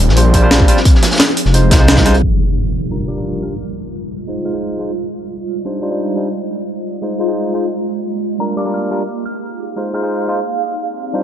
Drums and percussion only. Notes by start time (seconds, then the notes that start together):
0.09 snare
0.17 closed hi-hat
0.34 kick, closed hi-hat
0.51 snare, closed hi-hat
0.60 kick
0.68 closed hi-hat
0.77 snare
0.85 kick, closed hi-hat
0.95 snare
1.03 snare, closed hi-hat
1.11 snare, closed hi-hat
1.15 snare, closed hi-hat
1.19 snare, closed hi-hat
1.28 closed hi-hat
1.37 closed hi-hat
1.45 snare
1.54 closed hi-hat
1.71 kick, snare, closed hi-hat
1.88 snare, closed hi-hat
1.97 kick, snare, closed hi-hat
2.06 snare, closed hi-hat
2.14 closed hi-hat